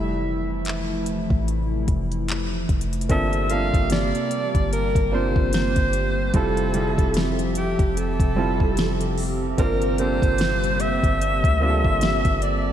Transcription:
Already playing: 808-style bass F1, analog synth pad C3 E3 F3 A3 E4, grand piano G3 A3 E4 E5
0.65 clap, closed hi-hat
1.06 closed hi-hat
1.30 808-style bass A1, kick
1.48 closed hi-hat
1.88 808-style bass F1, kick, closed hi-hat
2.12 closed hi-hat
2.28 clap, closed hi-hat
2.69 808-style bass F1, kick, closed hi-hat
2.81 closed hi-hat
2.93 closed hi-hat
3.01 closed hi-hat
3.09 808-style bass G1, analog synth pad C3 G3 A#3 C4 G4, grand piano A#3 C4 D4 F4 A4, alto saxophone E5, kick, closed hi-hat
3.33 closed hi-hat
3.50 grand piano A#3 C4 D4 F4 A4, alto saxophone F5, closed hi-hat
3.74 808-style bass G1, kick, closed hi-hat
3.90 alto saxophone D5, snare, closed hi-hat
4.15 closed hi-hat
4.31 closed hi-hat
4.55 808-style bass G1, kick, closed hi-hat
4.73 alto saxophone A#4, closed hi-hat
4.95 808-style bass G1, kick, closed hi-hat
5.12 grand piano A#3 C4 D4 F4 C5, alto saxophone C5
5.36 808-style bass G1, kick
5.53 alto saxophone C5, snare, closed hi-hat
5.76 808-style bass G1, kick, closed hi-hat
5.93 closed hi-hat
6.33 808-style bass F1, analog synth pad C3 F3 E5, grand piano G3 C4 E4 F4 A4, alto saxophone A4, kick, closed hi-hat
6.57 closed hi-hat
6.74 grand piano G3 C4 E4 F4 G#4, closed hi-hat
6.83 grand piano A4
6.98 808-style bass F1, kick, closed hi-hat
7.14 snare, closed hi-hat
7.39 closed hi-hat
7.55 alto saxophone G4, closed hi-hat
7.79 808-style bass F1, kick, closed hi-hat
7.97 alto saxophone A4, closed hi-hat
8.20 808-style bass F1, kick, closed hi-hat
8.36 grand piano G3 C4 E4 F4 A4
8.60 808-style bass F1, kick
8.77 snare, closed hi-hat
9.01 closed hi-hat
9.18 open hi-hat
9.58 808-style bass G1, analog synth pad G3 A#3, grand piano A#3 C4 D4 F4 A#4, alto saxophone A#4, kick, closed hi-hat
9.82 closed hi-hat
9.98 grand piano A#3 C4 D4 F4 A4, alto saxophone C5, closed hi-hat
10.22 808-style bass G1, kick, closed hi-hat
10.38 snare, closed hi-hat
10.64 closed hi-hat
10.80 alto saxophone E5, closed hi-hat
11.04 808-style bass G1, kick, closed hi-hat
11.21 closed hi-hat
11.44 808-style bass D2, kick, closed hi-hat
11.60 grand piano A#3 C4 D4 F4 G4
11.70 grand piano A4
11.85 808-style bass G1, kick
12.01 snare, closed hi-hat
12.25 808-style bass G1, kick, closed hi-hat
12.42 alto saxophone D5, closed hi-hat

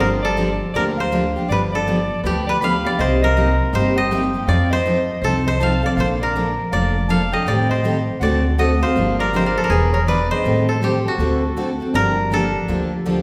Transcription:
Already playing: koto C5 D#5
0.00 upright bass G1, steel-string acoustic guitar D3 F3 A#3 D4 G4, koto A#4
0.22 koto A4, soprano saxophone D5
0.37 steel-string acoustic guitar D3 F3 A#3 D4 G4
0.74 upright bass D2, steel-string acoustic guitar D3 F3 A#3 D4 G4, koto A#4, soprano saxophone D5
0.97 koto C5, soprano saxophone F5
1.12 steel-string acoustic guitar D3 F3 A#3 D4 G4
1.36 steel-string acoustic guitar A#3 D4 G4
1.48 upright bass G1, steel-string acoustic guitar D3 F3 B3 D4 G4, koto B4, soprano saxophone D5
1.72 koto A4, soprano saxophone D5
1.87 steel-string acoustic guitar D3 F3 B3 D4 G4
2.24 upright bass D2, steel-string acoustic guitar D3 F3 B3 D4 G4, koto G4, soprano saxophone B4
2.47 koto B4, soprano saxophone D5
2.61 steel-string acoustic guitar D3 F3 B3 D4 G4, koto F5, soprano saxophone B5
2.84 steel-string acoustic guitar B3 D4 G4, koto D5, soprano saxophone F5
2.99 upright bass C2, steel-string acoustic guitar C3 G3 A#3 D#4 G4, koto C5, soprano saxophone D#5
3.22 koto A#4, soprano saxophone D#5
3.37 steel-string acoustic guitar C3 G3 A#3 D#4 G4
3.73 upright bass G1, steel-string acoustic guitar C3 G3 A#3 D#4 G4, koto C5, soprano saxophone D#5
3.96 koto D#5, soprano saxophone G5
4.11 steel-string acoustic guitar C3 G3 A#3 D#4 G4
4.34 steel-string acoustic guitar A#3 D#4 G4
4.47 upright bass F2, steel-string acoustic guitar F3 C4 D#4 A4, koto D5, soprano saxophone F5
4.70 koto C5, soprano saxophone D#5
4.86 steel-string acoustic guitar F3 C4 D#4 A4
5.21 upright bass C2, steel-string acoustic guitar F3 C4 D#4 A4, koto A4, soprano saxophone C5
5.46 koto C5, soprano saxophone D#5
5.60 steel-string acoustic guitar F3 C4 D#4 A4, koto F5, soprano saxophone A5
5.83 steel-string acoustic guitar C4 D#4 A4, koto D5, soprano saxophone F5
5.97 upright bass A#1, steel-string acoustic guitar D3 F3 A#3 D4 A4, koto C5, soprano saxophone F5
6.20 koto A#4, soprano saxophone D5
6.35 steel-string acoustic guitar D3 F3 A#3 D4 A4
6.71 upright bass F1, steel-string acoustic guitar D3 F3 A#3 D4 A4, koto D5, soprano saxophone F5
7.08 steel-string acoustic guitar D3 F3 A#3 D4 A4, koto F5, soprano saxophone A5
7.32 steel-string acoustic guitar A#3 D4 A4, koto D#5, soprano saxophone G5
7.45 upright bass A1, steel-string acoustic guitar D#3 G3 C4 G4 A4, koto D5, soprano saxophone G5
7.69 koto C5, soprano saxophone D#5
7.84 steel-string acoustic guitar D#3 G3 C4 G4 A4
8.20 upright bass D2, steel-string acoustic guitar D3 A3 C4 F#4 A4, koto D5, soprano saxophone F#5
8.58 steel-string acoustic guitar D3 A3 C4 F#4 A4, koto D#5, soprano saxophone F#5
8.82 steel-string acoustic guitar C4 F#4 A4, koto C5, soprano saxophone F5
8.96 upright bass G1, steel-string acoustic guitar D3 F3 A#3 D4 G4
9.19 koto A#4, soprano saxophone D5
9.33 steel-string acoustic guitar D3 F3 A#3 D4 G4, koto C5, soprano saxophone D#5
9.46 koto A#4, soprano saxophone D5
9.58 koto A4, soprano saxophone C5
9.64 koto A#4, soprano saxophone D5
9.70 upright bass E1, steel-string acoustic guitar E3 B3 D4 G#4 B4, koto G#4, soprano saxophone B4
9.93 koto A#4, soprano saxophone C#5
10.08 steel-string acoustic guitar E3 B3 D4 G#4 B4, koto B4, soprano saxophone D5
10.30 steel-string acoustic guitar B3 D4 G#4, koto C5, soprano saxophone D#5
10.44 upright bass A1, steel-string acoustic guitar D#3 G3 C4 G4 A4
10.68 koto A4, soprano saxophone C5
10.82 steel-string acoustic guitar D#3 G3 C4 G4 A4, koto G4, soprano saxophone C5
11.05 koto F#4, soprano saxophone A4
11.18 upright bass D2, steel-string acoustic guitar D3 A3 C4 F#4 A4
11.57 steel-string acoustic guitar D3 A3 C4 F#4 A4
11.80 steel-string acoustic guitar C4 F#4 A4
11.94 upright bass G1, steel-string acoustic guitar D3 F3 A#3 D4 G4, soprano saxophone D4, koto A#4
12.31 steel-string acoustic guitar D3 F3 A#3 D4 G4, soprano saxophone D4, koto A4
12.68 upright bass D2, steel-string acoustic guitar D3 F3 A#3 D4 G4
13.06 steel-string acoustic guitar D3 F3 A#3 D4 G4

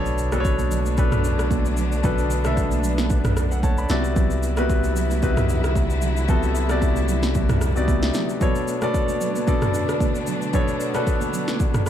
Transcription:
Already playing: sub bass B1, grand piano B2 B3 D4 A4 C#5, string section D3 A3 B3 D4, impact
0.06 shaker
0.18 shaker
0.32 grand piano B2 B3 D4 A4 B4, cross-stick, high conga, shaker
0.40 grand piano C#5
0.45 kick, shaker
0.59 high conga, shaker
0.71 low conga, shaker
0.86 high conga, shaker
0.97 grand piano B2 B3 D4 A4 B4, kick, shaker
1.12 cross-stick, mid tom, shaker
1.24 shaker
1.39 cross-stick, shaker
1.51 kick, high conga, shaker
1.65 shaker
1.77 low conga, shaker
1.92 shaker
2.03 grand piano B2 B3 D4 A4 B4, kick, low conga, shaker
2.18 shaker
2.31 shaker
2.44 grand piano B2 B3 D4 A4 E5, cross-stick, high conga, shaker
2.57 kick, shaker
2.71 high conga, shaker
2.84 low conga, shaker
2.98 snare, high conga, shaker
3.10 kick, shaker
3.25 cross-stick, mid tom, shaker
3.37 cross-stick, shaker
3.52 grand piano A4 F#5, shaker
3.63 grand piano C#5 A5, kick, high conga, shaker
3.78 grand piano D5 B5, shaker
3.89 sub bass C2, grand piano C3 B3 E4 F#4 D5, string section D3 F#3 E4, snare, low conga, shaker
4.04 shaker
4.16 kick, low conga, shaker
4.31 shaker
4.43 shaker
4.57 grand piano C3 B3 E4 F#4 B4, cross-stick, high conga, shaker
4.70 kick, shaker
4.83 high conga, shaker
4.96 low conga, shaker
5.10 high conga, shaker
5.22 grand piano C3 B3 D#4 F#4 B4, kick, shaker
5.29 grand piano E4
5.37 cross-stick, mid tom, shaker
5.49 shaker
5.64 cross-stick, shaker
5.76 kick, high conga, shaker
5.90 shaker
6.02 string section A3, low conga, shaker
6.17 shaker
6.28 grand piano C3 B3 E4 F#4 A4, kick, low conga, shaker
6.43 shaker
6.55 shaker
6.69 grand piano C3 B3 E4 F#4 D5, cross-stick, high conga, shaker
6.82 kick, shaker
6.96 high conga, shaker
7.08 low conga, shaker
7.23 snare, high conga, shaker
7.35 kick, low conga, shaker
7.49 cross-stick, mid tom, shaker
7.61 cross-stick, shaker
7.76 grand piano C3 B3 D#4 F#4 D5, shaker
7.83 grand piano E4
7.88 kick, high conga, shaker
8.03 snare, shaker
8.14 snare, low conga, shaker
8.29 shaker
8.41 grand piano B2 B3 D4 A4 C#5, string section D3 B3 D4, kick, low conga, shaker
8.55 shaker
8.68 shaker
8.82 grand piano B2 B3 D4 A4 D5, cross-stick, high conga, shaker
8.94 kick, shaker
9.08 high conga, shaker
9.21 low conga, shaker
9.35 high conga, shaker
9.47 grand piano B2 B3 D4 A4 D5, kick, shaker
9.62 cross-stick, mid tom, shaker
9.74 shaker
9.89 cross-stick, shaker
10.00 kick, high conga, shaker
10.15 shaker
10.27 low conga, shaker
10.42 shaker
10.53 grand piano B2 B3 D4 A4 C#5, kick, low conga, shaker
10.68 shaker
10.80 shaker
10.94 grand piano B2 B3 D4 A4 B4, cross-stick, high conga, shaker
11.07 kick, shaker
11.21 high conga, shaker
11.33 low conga, shaker
11.48 snare, high conga, shaker
11.60 kick, shaker
11.74 cross-stick, mid tom, shaker
11.86 cross-stick, shaker

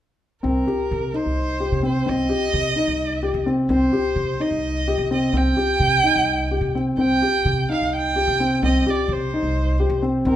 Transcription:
0.43 upright bass C2, felt piano C4, violin A#4
0.67 felt piano G4
0.91 upright bass C3
1.14 felt piano D#4, violin C5
1.26 upright bass C2
1.60 felt piano G4
1.72 upright bass C3
1.83 felt piano C4, violin C5
2.06 upright bass C2, felt piano C4, violin D#5
2.29 felt piano G4
2.54 upright bass C3
2.76 felt piano D#4
2.88 upright bass C2
3.23 felt piano G4
3.34 upright bass C3
3.46 felt piano C4
3.69 upright bass C2, felt piano C4, violin C5
3.93 felt piano G4
4.16 upright bass C3
4.40 felt piano D#4, violin D#5
4.51 upright bass C2
4.88 felt piano G4
4.98 upright bass C3
5.11 felt piano C4, violin D#5
5.33 upright bass C2, felt piano C4
5.37 violin G5
5.57 felt piano G4
5.80 upright bass C3
6.04 felt piano D#4
6.16 upright bass C2
6.51 felt piano G4
6.61 upright bass C3
6.75 felt piano C4
6.97 upright bass C2, felt piano C4, violin G5
7.22 felt piano G4
7.45 upright bass C3
7.70 felt piano D#4, violin F5
7.82 upright bass C2
7.95 violin G5
8.16 felt piano G4
8.27 upright bass C3
8.40 felt piano C4
8.62 upright bass C2, felt piano C4, violin D#5
8.87 felt piano G4, violin D5
9.08 upright bass C3
9.13 violin C5
9.34 felt piano D#4
9.43 upright bass C2
9.80 felt piano G4
9.89 upright bass C3
10.02 felt piano C4
10.25 upright bass C2, felt piano C4, violin A#4

